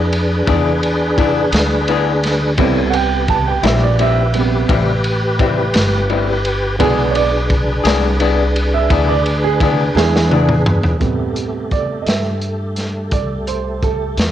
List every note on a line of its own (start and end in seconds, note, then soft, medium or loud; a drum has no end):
0.00 0.44 F2 loud
0.00 2.55 D4 medium
0.00 0.79 E4 medium
0.00 2.55 G#4 medium
0.00 2.54 B4 medium
0.13 ride medium
0.47 1.50 E2 medium
0.47 0.69 E3 medium
0.47 0.69 B3 medium
0.47 0.69 D4 loud
0.47 0.70 G#4 loud
0.47 kick loud
0.47 ride medium
0.83 ride medium
1.18 1.39 E3 medium
1.18 1.40 B3 medium
1.18 1.40 D4 medium
1.18 1.40 G#4 medium
1.18 kick medium
1.18 ride medium
1.52 2.55 D2 medium
1.52 snare loud
1.52 ride loud
1.88 2.10 E3 medium
1.88 2.10 B3 medium
1.88 2.11 D4 medium
1.88 2.11 G#4 medium
1.88 ride medium
2.24 snare soft
2.24 ride medium
2.58 3.61 C2 medium
2.58 2.79 A2 medium
2.58 4.32 C3 soft
2.58 4.33 G3 soft
2.58 2.80 G3 medium
2.58 4.33 B3 medium
2.58 2.80 C4 loud
2.58 2.80 E4 loud
2.58 2.94 A4 medium
2.58 2.94 C#5 medium
2.58 2.94 G#5 medium
2.58 kick loud
2.58 ride medium
2.90 6.76 G4 medium
2.90 6.76 B4 medium
2.90 2.94 F#5 medium
2.90 ride medium
2.95 3.28 G5 medium
3.28 3.46 A5 medium
3.28 kick medium
3.28 ride medium
3.48 3.64 G5 medium
3.63 4.66 A#1 loud
3.63 3.86 G3 soft
3.63 3.85 C4 medium
3.63 3.85 E4 medium
3.63 3.81 E5 medium
3.63 snare loud
3.63 ride medium
3.83 3.99 D5 medium
3.99 4.20 A2 medium
3.99 4.21 G3 medium
3.99 4.21 C4 medium
3.99 4.21 E4 medium
3.99 5.37 E5 medium
3.99 ride medium
4.33 4.65 C3 soft
4.33 4.66 G3 soft
4.33 4.66 B3 soft
4.33 ride medium
4.69 5.71 A1 medium
4.69 4.90 A2 medium
4.69 4.91 G3 medium
4.69 4.91 C4 medium
4.69 4.91 E4 medium
4.69 kick loud
4.69 ride medium
5.04 ride medium
5.39 5.60 A2 medium
5.39 5.61 G3 medium
5.39 5.61 C4 medium
5.39 5.62 E4 medium
5.39 kick medium
5.39 ride medium
5.74 6.77 G1 loud
5.74 snare loud
5.74 ride loud
6.10 6.31 A2 medium
6.10 6.31 G3 medium
6.10 6.32 C4 medium
6.10 6.32 E4 medium
6.10 ride medium
6.45 ride medium
6.79 7.82 B1 medium
6.79 7.26 D3 medium
6.79 7.01 E3 loud
6.79 7.26 G#3 soft
6.79 7.27 B3 medium
6.79 7.01 B3 medium
6.79 10.97 D4 medium
6.79 7.02 D4 medium
6.79 10.97 G#4 medium
6.79 7.14 G#4 medium
6.79 7.02 G#4 medium
6.79 10.97 B4 medium
6.79 kick loud
6.79 ride medium
7.11 7.15 C#5 medium
7.11 ride medium
7.16 8.69 D5 medium
7.50 kick medium
7.50 ride medium
7.84 8.87 C2 loud
7.84 8.07 B3 soft
7.84 8.06 D4 medium
7.84 8.06 G#4 medium
7.84 snare loud
7.84 ride loud
8.20 8.42 E3 medium
8.20 8.42 B3 medium
8.20 8.42 D4 medium
8.20 8.43 G#4 medium
8.20 ride medium
8.56 ride medium
8.74 9.08 E5 medium
8.90 9.93 D2 medium
8.90 9.12 E3 medium
8.90 9.12 B3 medium
8.90 9.12 D4 medium
8.90 9.13 G#4 medium
8.90 kick loud
8.90 ride medium
9.09 9.43 D5 medium
9.26 ride medium
9.44 9.95 G#4 medium
9.60 9.82 E3 medium
9.60 9.83 B3 medium
9.60 9.83 D4 medium
9.60 9.83 G#4 medium
9.60 kick medium
9.60 ride medium
9.95 10.98 E2 loud
9.95 10.97 E4 medium
9.95 10.99 G#4 medium
9.95 snare medium
10.16 snare medium
10.31 10.52 E3 medium
10.31 10.53 B3 medium
10.31 10.53 D4 medium
10.31 10.54 G#4 medium
10.31 high tom medium
10.49 mid tom medium
10.66 mid tom loud
10.83 floor tom medium
11.00 12.04 A2 medium
11.00 12.02 C3 soft
11.00 12.02 G3 soft
11.00 14.32 A3 medium
11.00 12.03 B3 soft
11.00 14.32 G4 medium
11.00 14.32 A4 medium
11.00 kick medium
11.00 closed hi-hat medium
11.36 closed hi-hat medium
11.71 12.06 D5 medium
11.71 kick medium
11.71 closed hi-hat medium
12.02 12.06 D#5 soft
12.06 13.09 G2 medium
12.06 13.09 E5 medium
12.06 snare medium
12.06 closed hi-hat medium
12.41 closed hi-hat soft
12.76 snare soft
12.76 closed hi-hat medium
13.12 14.15 C2 medium
13.12 13.47 D5 medium
13.12 kick medium
13.12 closed hi-hat medium
13.47 13.82 C5 medium
13.47 closed hi-hat medium
13.83 14.17 A4 medium
13.83 kick medium
13.83 closed hi-hat soft
14.17 14.32 E2 medium
14.17 snare loud
14.17 closed hi-hat medium